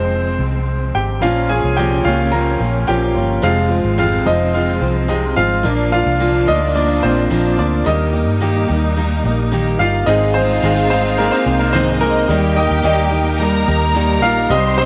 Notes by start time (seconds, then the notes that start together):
Already playing: F1 F3 G#3 C4 C5
0.39 C2
0.95 G#1 G4 G5
1.20 A#1 A#2 F3 A#3 C#4 F4 F5
1.49 A#3 C#4 F4 G#4 G#5
1.64 C2
1.77 A#2 F3 A#3 C#4 F4 G4 G5
2.05 C#2 A#3 C#4 F4 F5
2.32 F3 A#3 C#4 F4 A#4 A#5
2.60 A#1 A#3 C#4 F4
2.87 A#1 A#2 F3 A#3 C#4 F4 G4 G5
3.15 G1 A#3 C#4 F4
3.42 F1 F2 C3 F3 G#3 C4 F4 F5
3.70 F3 G#3 C4 F4
3.84 G#1
3.98 F2 C3 F3 G#3 C4 F4 F5
4.25 F1 F3 G#3 C4 D#4 F4 D#5
4.53 F3 G#3 C4 F4 F5
4.80 C2 F3 G#3 C4 F4
5.08 F2 C3 F3 G#3 C4 D#4 F4 D#5
5.36 G#1 F3 G#3 C4 F4 F5
5.63 A#1 A#2 F3 A#3 D4 F4
5.92 A#3 D4 F4 F5
6.06 C2
6.20 A#2 F3 A#3 D4 F4
6.47 D2 A#3 D4 D#4 F4 D#5
6.74 F3 A#3 D4 F4 D5
7.02 A#1 A#3 C4 D4 F4 C5
7.30 A#1 A#2 F3 A#3 D4 F4
7.57 D2 A#3 D4 F4 D5
7.85 D#2 D#3 G3 A#3 D#4 G4 D#5
8.13 A#3 D#4 G4
8.28 G2
8.41 D#3 A#3 D#4 G4
8.69 D#2 A#3 D#4 G4
8.96 D#3 A#3 D#4 G4
9.24 A#1 A#3 D#4 G4
9.52 D#3 A#3 D#4 G4
9.79 G1 A#3 D#4 F4 G4 F5
10.06 G#1 G#2 D#3 G#3 C4 D#4 F4 G#4 D#5 F5
10.34 G#3 C4 D#4 G#4 C5
10.63 G#1 G#2 D#3 G#3 C4 D#4 G#4
10.90 G#3 C4 D#4 G#4 C5
11.18 G#3 A#3 C4 D#4 G#4 A#4
11.32 C4 C5
11.46 C2 G#3 C4 D#4 G#4
11.59 A#3 A#4
11.73 G#2 D#3 G#3 C4 D#4 G#4 C5 D#5
11.92 C5
12.01 G#3 A#3 C4 D#4 G#4 A#4
12.28 D#2 D#3 G3 A#3 D#4 G4 G5
12.56 A#3 D#4 G4 D#5
12.71 D#2
12.83 D#2 D#3 G3 A#3 D#4 G4 D#5
13.11 A#3 D#4 G4
13.39 G3 A#3 D#4 G4 A#4 A#5
13.68 D#2 A#3 D#4 G4
13.95 D#3 G3 A#3 D#4 G4
14.22 A#1 A#3 D#4 F4 G4 F5
14.50 C2 C3 G3 C4 D#4 G4 C5 D#5 C6
14.77 G3 C4 D#4 G4 C5